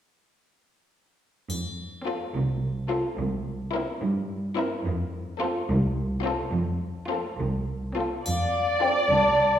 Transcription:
1.50 2.17 F2 soft
1.50 triangle soft
2.06 2.27 C4 soft
2.06 2.27 F4 soft
2.06 2.27 A4 soft
2.34 3.01 C2 soft
2.90 3.11 C4 soft
2.90 3.11 F4 soft
2.90 3.11 A4 soft
3.18 3.85 C2 soft
3.74 3.95 C4 soft
3.74 3.95 E4 soft
3.74 3.95 A#4 soft
4.02 4.69 G2 medium
4.58 4.78 C4 soft
4.58 4.78 E4 soft
4.58 4.79 A#4 soft
4.86 5.52 F2 medium
5.41 5.62 C4 soft
5.41 5.61 F4 medium
5.41 5.62 A4 soft
5.68 6.36 C2 medium
6.24 6.46 C4 medium
6.24 6.45 F4 soft
6.24 6.46 A4 soft
6.53 7.21 F2 medium
7.09 7.31 C4 soft
7.09 7.31 F4 soft
7.09 7.32 A4 soft
7.39 8.09 C2 soft
7.97 8.18 C4 soft
7.97 8.18 F4 soft
7.97 8.19 A4 soft
8.25 8.93 F2 soft
8.25 9.59 D5 soft
8.25 8.78 F5 soft
8.25 triangle soft
8.81 9.03 C4 soft
8.81 9.03 F4 soft
8.81 9.03 A4 soft
8.81 8.88 G5 soft
9.10 9.59 C2 soft
9.10 9.59 A5 medium

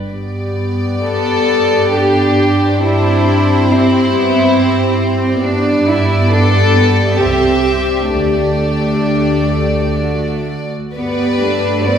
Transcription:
0.09 5.41 G2 soft
0.09 2.80 B3 soft
0.09 5.42 G4 soft
0.09 2.80 D5 soft
1.02 1.89 B3 soft
1.02 1.89 A4 medium
1.94 2.84 D4 soft
1.94 2.84 G4 medium
2.82 5.42 C4 medium
2.82 3.69 D4 medium
2.82 3.70 E4 medium
2.82 5.45 C5 soft
3.71 4.15 C4 medium
3.71 5.45 E4 medium
4.16 4.59 B3 medium
4.60 5.44 C4 medium
5.44 7.17 G2 medium
5.44 7.17 B3 medium
5.44 5.88 D4 medium
5.44 9.99 G4 medium
5.44 7.17 D5 soft
5.89 6.33 E4 medium
6.31 6.76 D4 soft
6.31 7.16 A4 medium
6.76 7.21 B3 soft
7.18 8.12 C2 soft
7.18 8.12 C4 soft
7.18 8.11 G4 medium
7.18 8.12 E5 soft
8.10 10.76 D2 soft
8.10 10.75 A3 soft
8.10 10.46 A3 soft
8.10 10.45 D4 medium
8.10 10.72 D5 soft
10.03 10.75 F#4 soft
10.95 11.98 G2 soft
10.95 11.39 B3 soft
10.95 11.83 G4 soft
10.95 11.82 B4 medium
10.95 11.83 D5 soft
11.41 11.87 A3 soft
11.41 11.86 D4 soft
11.85 11.98 B3 soft
11.85 11.98 C4 soft
11.85 11.98 F#4 soft
11.85 11.98 B4 soft
11.85 11.98 D5 medium

